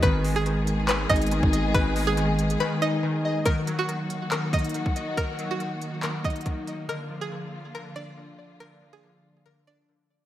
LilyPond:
<<
  \new Staff \with { instrumentName = "Synth pluck" } { \time 4/4 \key ees \minor \tempo 4 = 140 ces''8. aes'4~ aes'16 ces''8 ees''4. | ces''8. aes'4~ aes'16 ces''8 ees''4. | bes'8. ges'4~ ges'16 bes'8 ees''4. | bes'8. ges'4~ ges'16 bes'8 ees''4. |
bes'8. aes'4~ aes'16 bes'8 d''4. | bes'8. aes'4~ aes'16 bes'8 d''4. | }
  \new Staff \with { instrumentName = "String section" } { \clef bass \time 4/4 \key ees \minor << { <ees aes aes'>1~ | <ees aes aes'>1 | <ees ges ges'>1~ | <ees ges ges'>1 |
<d f f'>1~ | <d f f'>1 | } \\ { ces'1~ | ces'1 | bes1~ | bes1~ |
bes1~ | bes1 | } >> }
  \new Staff \with { instrumentName = "Synth keys" } { \clef bass \time 4/4 \key ees \minor ees8 aes8 ees4 ees8 ees'8 ees8 ees''8 | ees8 aes8 ees4 ees8 ees'8 ees8 ees''8 | ees8 ges8 ees4 ees8 ees'8 ees8 ees''8 | ees8 ges8 ees4 ees8 ees'8 ees8 ees''8 |
d8 f8 d4 d8 d'8 d8 d''8 | d8 f8 d4 d8 d'8 d8 d''8 | }
  \new Staff \with { instrumentName = "808-style bass" } { \clef bass \time 4/4 \key ees \minor aes,,2~ aes,,8 aes,,8. aes,,8. | aes,,2 r2 | r1 | r1 |
r1 | r1 | }
  \new DrumStaff \with { instrumentName = "Drums" } \drummode { \time 4/4 <hh bd>8 hho8 hh8 hh8 <hc hh>8 <hh bd>32 hh32 hh32 hh32 hh16 bd16 hh8 | <hh bd>8 hho8 hh8 hh16 hh16 r4 r4 | <hh bd>8 hh8 hh8 hh8 <hc hh>8 <hh bd>32 hh32 hh32 hh32 hh16 bd16 hh8 | <hh bd>8 hh8 hh8 hh8 <hc hh>8 <hh bd>32 hh32 hh32 hh32 <hh bd>8 hh8 |
r4 r4 r4 r4 | r4 r4 r4 r4 | }
>>